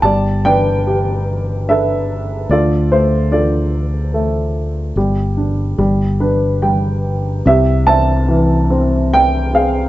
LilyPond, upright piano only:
<<
  \new Staff \with { instrumentName = "Upright piano" } { \time 3/4 \key c \major \tempo 4 = 73 << { a''8 g''4. e''4 | d''8 c''8 d''2~ | d''2 r4 | e''8 a''4. g''8 f''8 | } \\ { d''8 <b' d''>4. <a' b'>4 | <f' a'>4 <f' a'>2~ | <f' a'>2 r4 | g'8 e''4. r8 aes'8 | } >> }
  \new Staff \with { instrumentName = "Upright piano" } { \time 3/4 \key c \major g8 d'8 g'4 d'4 | d8 a8 d4 a4 | g8 d'8 g8 <d' b'>8 <g g''>4 | c8 c'8 e8 c'4 c'8 | }
>>